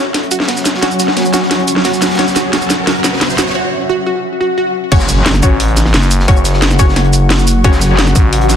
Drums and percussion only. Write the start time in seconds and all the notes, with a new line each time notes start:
0.14 snare, closed hi-hat
0.23 closed hi-hat
0.31 closed hi-hat, shaker
0.40 snare
0.48 snare, closed hi-hat
0.57 snare, shaker
0.65 snare, closed hi-hat, shaker
0.74 snare
0.82 snare, closed hi-hat
0.91 shaker
1.00 snare, closed hi-hat, shaker
1.08 snare
1.16 snare, closed hi-hat
1.25 shaker
1.33 snare, closed hi-hat, shaker
1.42 snare
1.51 snare, closed hi-hat
1.59 closed hi-hat
1.68 closed hi-hat, shaker
1.76 snare
1.84 snare, closed hi-hat
1.93 snare, shaker
2.02 snare, closed hi-hat, shaker
2.06 snare, closed hi-hat
2.10 snare, closed hi-hat
2.15 snare, closed hi-hat
2.18 snare, closed hi-hat
2.28 snare, shaker
2.36 snare, closed hi-hat, shaker
2.53 snare, closed hi-hat
2.62 closed hi-hat, shaker
2.70 snare, closed hi-hat, shaker
2.87 snare, closed hi-hat
2.95 closed hi-hat
3.04 snare, closed hi-hat, shaker
3.13 snare
3.21 snare, closed hi-hat
3.30 snare, shaker
3.38 snare, closed hi-hat, shaker
3.47 snare
4.92 kick, closed hi-hat, crash
5.00 snare, shaker
5.09 snare, closed hi-hat, shaker
5.26 snare, closed hi-hat
5.34 snare, closed hi-hat, shaker
5.43 kick, closed hi-hat, shaker
5.60 closed hi-hat
5.68 closed hi-hat
5.77 snare, closed hi-hat, shaker
5.85 snare
5.94 snare, closed hi-hat
6.02 snare, shaker
6.11 closed hi-hat, shaker
6.20 snare
6.28 kick, closed hi-hat
6.37 shaker
6.44 snare, closed hi-hat, shaker
6.53 snare
6.62 snare, closed hi-hat
6.71 snare, shaker
6.79 kick, snare, closed hi-hat, shaker
6.89 snare
6.96 snare, closed hi-hat
7.04 closed hi-hat
7.13 closed hi-hat, shaker
7.29 snare, closed hi-hat
7.39 snare, shaker
7.47 closed hi-hat, shaker
7.64 kick, closed hi-hat
7.73 snare, shaker
7.81 snare, closed hi-hat, shaker
7.99 snare, closed hi-hat
8.07 snare, closed hi-hat, shaker
8.16 kick, closed hi-hat, shaker
8.33 closed hi-hat
8.41 closed hi-hat
8.50 snare, closed hi-hat, shaker